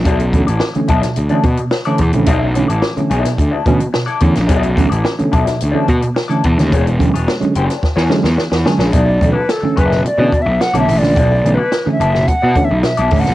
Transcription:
<<
  \new Staff \with { instrumentName = "Flute" } { \time 4/4 \key b \dorian \tempo 4 = 108 r1 | r1 | r1 | r1 |
\tuplet 3/2 { d''4 b'8 } a'8 b'8 \tuplet 3/2 { d''4 e''8 fis''8 e''8 d''8~ } | \tuplet 3/2 { d''4 b'8~ b'8 e''4 fis''4 e''8 e''4 fis''8 } | }
  \new Staff \with { instrumentName = "Clean electric guitar" } { \time 4/4 \key b \dorian <e' a' d''>16 r8 <e' a' d''>16 r8 <e' a' d''>16 r8 <e' a' d''>16 r8. <e' a' d''>16 r8 | <e' a' d''>16 r8 <e' a' d''>16 r8 <e' a' d''>16 r8 <e' a' d''>16 r8. <e' a' d''>16 r8 | <e' a' d''>16 r8 <e' a' d''>16 r8 <e' a' d''>16 r8 <e' a' d''>16 r8. <e' a' d''>16 r8 | <d' gis' cis''>16 r8 <d' gis' cis''>16 r8 <d' gis' cis''>16 r8 <d' gis' cis''>16 r4 <d' gis' cis''>16 <d' gis' cis''>16 |
<e' a' d''>16 r8 <e' a' d''>16 r8 <e' a' d''>16 r8 <e' a' d''>16 r8. <e' a' d''>16 r8 | <e' a' d''>16 r8 <e' a' d''>16 r8 <e' a' d''>16 r8 <e' a' d''>16 r8. <e' a' d''>16 r8 | }
  \new Staff \with { instrumentName = "Tine electric piano" } { \clef bass \time 4/4 \key b \dorian b,16 <a cis'>16 <d e a cis'>16 r8 <d e a cis'>16 r16 b,16 r16 <d e a cis'>16 r16 b,16 r16 <d e a cis'>16 b,16 <d e a cis'>16 | b,16 <a cis'>16 <d e a cis'>16 r8 <d e a cis'>16 r16 b,16 r8 <d e a cis'>16 r16 b,16 r16 <d e a cis'>16 <a cis'>16 | b,16 <a cis'>16 <d e a cis'>16 r8 <d e a cis'>16 r16 b,16 r16 <d e a cis'>16 r16 b,16 r16 <d e a cis'>16 b,16 <d e a cis'>16 | r16 <gis cis'>16 <d fis gis cis'>16 r8 <d fis gis cis'>16 r4 <d fis gis cis'>16 r8. <d fis gis cis'>16 <gis cis'>16 |
b,16 <a cis'>16 <d e a cis'>16 r8 <d e a cis'>16 r16 b,16 r16 <d e a cis'>16 r16 b,16 r16 <d e a cis'>16 b,16 <d e a cis'>16 | b,16 <a cis'>16 <d e a cis'>16 r8 <d e a cis'>16 r16 b,16 r8 <d e a cis'>16 r16 b,16 r16 <d e a cis'>16 <a cis'>16 | }
  \new Staff \with { instrumentName = "Picked electric bass" } { \clef bass \time 4/4 \key b \dorian b,,8. a,,16 r8 b,,16 r16 d,16 r16 b,16 r8. e,16 ais,,16 | b,,8. a,,16 r8 b,,16 r16 d,16 r16 b,16 r8. e,16 ais,,16 | b,,8. a,,16 r8 b,,16 r16 d,16 r16 b,16 r8. e,16 dis,16 | e,,8. e,,16 r8 fis,,16 r8 e,16 r16 e,16 r16 e,16 r16 ais,,16 |
b,,8 b,,16 r8. fis,,8 r16 b,16 r16 b,,16 r16 b,,16 a,,16 ais,,16 | b,,8 b,,16 r8. fis,,8 r16 b,16 r16 b,,16 r16 b,,16 a,,16 ais,,16 | }
  \new DrumStaff \with { instrumentName = "Drums" } \drummode { \time 4/4 <hh bd>16 hh16 <hh bd>16 hh16 sn16 hh16 <hh bd>16 <hh sn>16 hh16 hh16 <hh bd>16 hh16 sn16 hh16 <hh bd>16 hh16 | <hh bd>8 hh16 hh16 sn16 hh16 hh16 <hh sn>16 <hh bd>8 <hh bd>16 hh16 sn16 hh16 <hh bd>16 <hh sn>16 | <hh bd>16 hh16 <hh bd>16 hh16 sn16 hh16 <hh bd>16 <hh sn>16 hh8 <hh bd>16 hh16 sn16 hh16 <hh bd>16 <hh sn>16 | <hh bd>16 hh16 <hh bd>16 hh16 sn16 hh16 hh16 <hh sn>16 <bd sn>16 sn16 sn16 sn16 sn16 sn16 sn16 sn16 |
<hh bd>8 <hh bd>8 <hh sn>8 <hh bd>16 sn16 hh8 <hh bd>8 <hh sn>16 hh16 hho16 sn16 | <hh bd>8 hh8 <hh sn>8 hh16 sn16 <hh bd>8 <hh bd>8 <hh sn>16 hh16 <hho bd>16 sn16 | }
>>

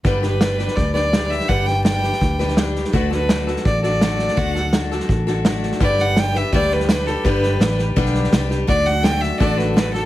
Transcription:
<<
  \new Staff \with { instrumentName = "Fiddle" } { \time 4/4 \key g \major \tempo 4 = 167 b'8 b'4. d''8 d''4 e''8 | fis''8 g''8 g''2 r4 | b'8 b'4 r8 d''8 d''4. | fis''4 r2. |
d''8 fis''8 g''8 e''8 d''8 b'8 b'8 a'8 | b'4. r2 r8 | d''8 fis''8 g''8 e''8 d''8 b'8 b'8 a'8 | }
  \new Staff \with { instrumentName = "Steel-string acoustic guitar" } { \time 4/4 \key g \major <g, d g d' g' b'>8 <g d' g' b'>8 <g d' g' b'>8 <g d' g' b'>4 <g d' g' b'>8 <g d' g' b'>4 | <g, d g d' g' b'>8 <g d' g' b'>8 <g d' g' b'>8 <g d' g' b'>4 <g d' g' b'>8 <g d' g' b'>4 | <d a d' fis' a'>8 <d' fis' a'>8 <a d' fis' a'>8 <d' fis' a'>4 <d' fis' a'>8 <a d' fis' a'>4 | <d a d' fis' a'>8 <d' fis' a'>8 <a d' fis' a'>8 <d' fis' a'>4 <d' fis' a'>8 <a d' fis' a'>4 |
<g, d g d' g' b'>4 <g d' g' b'>8 <g d' g' b'>8 <g, d g d' g' b'>4 <g d' g' b'>8 <g d' g' b'>8 | <g, d g d' g' b'>4 <g d' g' b'>8 <g d' g' b'>8 <g, d g d' g' b'>4 <g d' g' b'>8 <g d' g' b'>8 | <d a d' fis' a'>4 <a d' fis' a'>4 <d a d' fis' a'>4 <a d' fis' a'>8 <d' fis' a'>8 | }
  \new Staff \with { instrumentName = "Fingered electric bass" } { \clef bass \time 4/4 \key g \major g,,2 d,2 | g,,2 d,2 | d,2 a,,2 | d,2 a,,2 |
g,,2 d,2 | g,,4 a,,4 b,,4 c,4 | d,2 a,,2 | }
  \new DrumStaff \with { instrumentName = "Drums" } \drummode { \time 4/4 <bd sn>8 sn8 <hhp sn>8 sn16 sn16 <bd sn>8 sn8 <hhp sn>8 sn16 sn16 | <bd sn>8 sn8 <hhp sn>8 sn16 sn16 <bd sn>8 sn16 sn16 <hhp sn>8 sn16 sn16 | <bd sn>8 sn8 <hhp sn>8 sn16 sn16 <bd sn>8 sn8 <hhp sn>8 sn16 sn16 | <bd sn>8 sn8 <hhp sn>8 sn16 sn16 <bd sn>8 sn8 <hhp sn>8 sn16 sn16 |
<bd sn>8 sn8 <hhp sn>8 sn8 <bd sn>16 sn16 sn16 sn16 <hhp sn>8 sn8 | <bd sn>8 sn8 <hhp sn>8 sn8 <bd sn>16 sn16 sn16 sn16 <hhp sn>8 sn8 | <bd sn>8 sn8 <hhp sn>8 sn8 <bd sn>8 sn8 <hhp sn>8 sn8 | }
>>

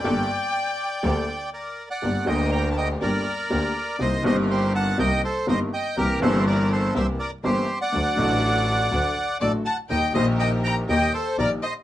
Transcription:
<<
  \new Staff \with { instrumentName = "Violin" } { \time 4/4 \key g \minor \tempo 4 = 122 g''2. r4 | r1 | r1 | r1 |
r2. d''8 a''8 | g''8 ees''8 g''8 bes''8 g''8 c''8 d''8 ees''8 | }
  \new Staff \with { instrumentName = "Bandoneon" } { \time 4/4 \key g \minor << { g''2. d''8. fis''16~ | fis''8 g''8 bes''16. a''32 g''8 d''2 | ees''8 ees''8 c''8 a''8 g''8 c''8 ees''8 g''8 | bes'8 c''8 d''8 c''8 e''8 d''8 c''8. fis''16~ |
fis''2. d''8 a''8 | g''8 ees''8 g''8 bes''8 g''8 c''8 d''8 ees''8 | } \\ { d''2. bes'8. d''16~ | d''8 ees''8 g''8 ees''8 bes'2 | c''8 c''8 g'8 fis''8 ees''8 a'8 c''8 ees''8 | g'8 a'8 bes'8 a'8 c''8 bes'8 g'8. d''16~ |
d''2. a'8 fis''8 | ees''8 c''8 ees''8 g''8 ees''8 a'8 bes'8 c''8 | } >> }
  \new Staff \with { instrumentName = "String section" } { \time 4/4 \key g \minor <bes g' a'>8 r4. <bes g' a'>8 r4. | <d' g' bes'>8 <d' g' bes'>4. <d' g' bes'>8 r8 <d' g' bes'>8 r8 | <c' ees' bes'>8 <c' ees' bes'>4. <c' ees' bes'>8 r8 <c' ees' bes'>8 r8 | <c' e' bes'>8 <c' e' bes'>4. <c' e' bes'>8 r8 <c' e' bes'>8 r8 |
<d' fis' a'>8 <d' fis' a'>4. <d' fis' a'>8 r8 <d' fis' a'>8 r8 | <ees' g' bes'>8 <ees' g' bes'>4. <ees' g' bes'>8 r8 <ees' g' bes'>8 r8 | }
  \new Staff \with { instrumentName = "Upright piano" } { \clef bass \time 4/4 \key g \minor <g,, g, g bes d' a'>8 r4. <d, d g bes d' a'>8 r4. | <g,, g, d g bes g'>8 <d, d g bes g'>4. <g,, g, d g bes g'>8 r8 <d, d g bes g'>8 r8 | <c, c ees bes c' g'>8 <g,, g, ees bes c' g'>4. <c, c ees bes c' g'>8 r8 <g,, g, ees bes c' g'>8 r8 | <c, c e bes c' g'>8 <g,, g, e bes c' g'>4. <c, c e bes c' g'>8 r8 <g,, g, e bes c' g'>8 r8 |
<d, d fis a fis'>8 <a,, a, d fis a fis'>4. <d, d fis a fis'>8 r8 <a,, a, d fis a fis'>8 r8 | <ees, ees g bes g'>8 <bes,, bes, ees g bes g'>4. <ees, ees g bes g'>8 r8 <bes,, bes, ees g bes g'>8 r8 | }
  \new Staff \with { instrumentName = "Double bass" } { \clef bass \time 4/4 \key g \minor g,,8 r4. d,8 r4. | g,,8 d,4. g,,8 r8 d,8 r8 | c,8 g,,4. c,8 r8 g,,8 r8 | c,8 g,,4. c,8 r8 g,,8 r8 |
d,8 a,,4. d,8 r8 a,,8 r8 | ees,8 bes,,4. ees,8 r8 bes,,8 r8 | }
>>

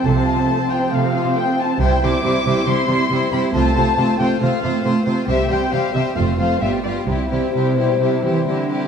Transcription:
<<
  \new Staff \with { instrumentName = "Violin section" } { \time 4/4 \key c \major \tempo 4 = 136 a''4. g''8 f''4 g''8 a''8 | g''8 d'''4. c'''4. b''8 | a''4. g''8 f''4 r4 | e''8 g''8 f''8 e''8 f''8 f''8 e''8 d''8 |
c''2. r4 | }
  \new Staff \with { instrumentName = "Violin section" } { \time 4/4 \key c \major << { c''1 | c''8 c''8 c''8 c''8 c''8 c''8 c''8 c''8 | c''8 c''8 c''8 c''8 c''8 c''8 c''8 c''8 | c''8 c''8 c''8 c''8 c''8 c''8 g'8 g'8 |
g'8 g'8 g'8 g'8 g'8 g'8 g'8 g'8 | } \\ { a16 c'16 f'16 c'16 a16 c'16 f'16 c'16 a16 c'16 f'16 c'16 a16 c'16 f'16 c'16 | e'8 e'8 e'8 e'8 e'8 e'8 e'8 e'8 | f'8 f'8 f'8 f'8 f'8 f'8 f'8 f'8 | g'8 g'8 g'8 g'8 f'8 f'8 f'8 f'8 |
e'8 e'8 e'8 e'8 e'8 e'8 e'8 e'8 | } >> }
  \new Staff \with { instrumentName = "Viola section" } { \time 4/4 \key c \major <f c'>1 | <g c'>8 <g c'>8 <g c'>8 <g c'>8 <g c'>8 <g c'>8 <g c'>8 <g c'>8 | <a c'>8 <a c'>8 <a c'>8 <a c'>8 <a c'>8 <a c'>8 <a c'>8 <a c'>8 | <g c'>8 <g c'>8 <g c'>8 <g c'>8 <a c'>8 <a c'>8 <g b>8 <g b>8 |
<g c'>8 <g c'>8 <g c'>8 <g c'>8 <g c'>8 <g c'>8 <g c'>8 <g c'>8 | }
  \new Staff \with { instrumentName = "Cello section" } { \clef bass \time 4/4 \key c \major c4 r4 c4 r4 | c8 c8 c8 c8 c8 c8 c8 c8 | c8 c8 c8 c8 c8 c8 c8 c8 | c8 c8 c8 c8 f,8 f,8 g,8 g,8 |
c8 c8 c8 b,8 c8 e8 d4 | }
  \new Staff \with { instrumentName = "Double bass section" } { \clef bass \time 4/4 \key c \major c,4 r2. | c,8 r2. r8 | c,8 r2. r8 | c,8 r4. f,,8 r8 g,,8 r8 |
c,8 r2. r8 | }
>>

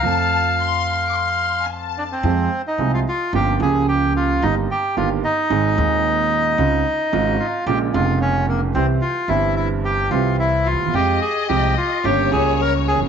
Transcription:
<<
  \new Staff \with { instrumentName = "Violin section" } { \time 4/4 \key f \major \tempo 4 = 110 a''4 c'''8.~ c'''32 d'''32 c'''8.~ c'''32 aes''32 a''4 | \key f \minor r1 | r1 | r1 |
r1 | ees''2 des''2 | }
  \new Staff \with { instrumentName = "Bandoneon" } { \time 4/4 \key f \major f''2. r8 d'16 c'16~ | \key f \minor c'8. ees'8 f'16 f'8 g'8 aes'8 g'8 f'8 | ees'8 g'8 f'8 ees'2~ ees'8~ | ees'4. f'8 g'8 f'8 des'8 bes8 |
c'8 f'8 e'8 e'8 g'8 f'8 e'8 f'8 | g'8 aes'8 g'8 f'8 g'8 aes'8 bes'8 aes'8 | }
  \new Staff \with { instrumentName = "Grand piano" } { \clef bass \time 4/4 \key f \major << { <f, f a c' a'>1 | \key f \minor <f, f aes c' aes'>8 r8 <c, c f aes c' aes'>8 r8 <g,, g, f bes des' g'>8 <des, des f bes des' g'>4. | <g,, g, ees g bes g'>8 r8 <g,, g, ees g bes g'>8 r8 <aes,, aes, ees aes c' aes'>8 <ees,, ees, ees aes c' aes'>4. | <des, des aes c' f'>8 r8 <aes,, aes, des aes c' f'>8 r8 <bes,, bes, des aes bes f'>8 <f,, f, des aes bes f'>4. |
<c, c e g c' g'>8 r8 <g,, g, e g c' g'>4. <c, c e g c' g'>4. | <f, f aes c' g'>8 r8 <c, c f aes c' g'>8 r8 <g,, g, des g bes g'>8 <des, des g bes g'>4. | } \\ { r1 | r1 | r1 | r1 |
r2. r8 r32 d,32 ees,32 e,32 | r2. r8 r32 e,32 f,32 r32 | } >> }
  \new Staff \with { instrumentName = "Upright bass" } { \clef bass \time 4/4 \key f \major f,2.~ f,8. r16 | \key f \minor f,16. r8 r32 c,16. r8 r32 g,,16. r32 des,4~ des,16. r32 | g,,16. r8 r32 g,,16. r8 r32 aes,,16. r32 ees,4~ ees,16. r32 | des,16. r8 r32 aes,,16. r8 r32 bes,,16. r32 f,,4~ f,,16. r32 |
c,16. r8 r32 g,,4~ g,,16. r32 c,4~ c,32 d,32 ees,32 e,32 | f,16. r8 r32 c,16. r8 r32 g,,16. r32 des,4~ des,32 e,,32 f,,32 r32 | }
>>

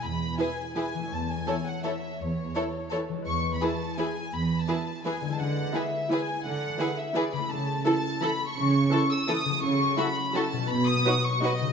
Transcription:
<<
  \new Staff \with { instrumentName = "Violin section" } { \time 3/4 \key e \major \tempo 4 = 168 b''4 gis''4 gis''4 | a''8 gis''4 fis''8 e''4 | cis''2 r4 | cis'''8. b''16 a''4 gis''4 |
b''8. a''4~ a''16 gis''8. a''16 | fis''4 e''4 gis''4 | fis''4. e''8 d''8 b''8 | a''4 a''4 b''8. cis'''16~ |
cis'''4. e'''8 dis'''4 | cis'''4 b''4 a''4 | b''8 dis'''4 cis'''8 dis''4 | }
  \new Staff \with { instrumentName = "Violin section" } { \time 3/4 \key e \major r4 <gis' b'>4 <gis' b'>4 | r4 <a' cis''>4 <a' cis''>4 | r4 <a' cis''>4 <a' cis''>4 | r4 <gis' b'>4 <gis' b'>4 |
r4 <gis' b'>4 <gis' b'>4 | r4 <gis' b'>4 <gis' b'>4 | r4 <gis' b'>4 <gis' b'>4 | r4 a'4 a'4 |
r4 a'4 a'4 | r4 <fis' a'>4 <fis' a'>4 | r4 <fis' b'>4 <fis' b'>4 | }
  \new Staff \with { instrumentName = "Harp" } { \time 3/4 \key e \major <e gis e' b'>2. | <e a e' cis''>2.~ | <e a e' cis''>2. | <e gis e' b'>2.~ |
<e gis e' b'>2. | <d gis e' b'>2.~ | <d gis e' b'>2. | <cis a e' a'>2.~ |
<cis a e' a'>2. | <cis fis e' a'>2. | <b, fis fis' b'>2. | }
  \new Staff \with { instrumentName = "Viola section" } { \time 3/4 \key e \major r4 <e e'>4 <e e'>4 | r4 <e e'>4 <e e'>4 | r4 <e e'>4 <e e'>4 | r4 <e e'>4 <e e'>4 |
r4 <e e'>4 <e e'>4 | r4 <e e'>4 <e e'>4 | r4 <e e'>4 <e e'>4 | r4 <e e'>4 <e e'>4 |
r4 <e e'>4 <e e'>4 | r4 <fis e'>4 <fis e'>4 | r4 <fis dis'>4 <fis dis'>4 | }
  \new Staff \with { instrumentName = "Cello section" } { \clef bass \time 3/4 \key e \major e,4 r2 | e,4 r2 | e,4 r2 | e,4 r2 |
e,4 r2 | d4 r2 | d4 r2 | cis4 r2 |
cis4 r2 | cis4 r2 | b,4 r2 | }
>>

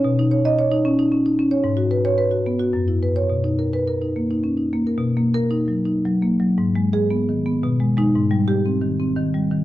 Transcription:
\new Staff \with { instrumentName = "Marimba" } { \time 3/4 \key b \major \tempo 4 = 113 << { r8. dis''16 r2 | r8. cis''16 r4. r16 cis''16 | r8. b'16 r2 | \tuplet 3/2 { r4 ais'8~ } ais'16 r4. r16 |
\tuplet 3/2 { r4 gis'8~ } gis'16 r8. \tuplet 3/2 { r4 dis'8 } | \tuplet 3/2 { r4 g'8~ } g'16 r4. r16 | } \\ { b,16 dis'16 cis''8 cis''16 dis'16 cis'16 dis'16 cis'16 dis'16 cis'16 cis''16 | gis,16 fis'16 b'8 b'16 fis'16 b16 fis'16 fis,16 e'16 b'8 | b,16 dis'16 ais'8 ais'16 dis'16 ais16 dis'16 cis'16 dis'16 ais16 ais'16 | \tuplet 3/2 { b,8 ais4 dis'8 fis8 dis'8 fis8 ais8 fis8 } |
\tuplet 3/2 { gis,8 gis4 b8 dis8 b8 b,8 gis8 gis8 } | \tuplet 3/2 { gis,8 g4 bis8 dis8 bis8 dis8 g8 dis8 } | } >> }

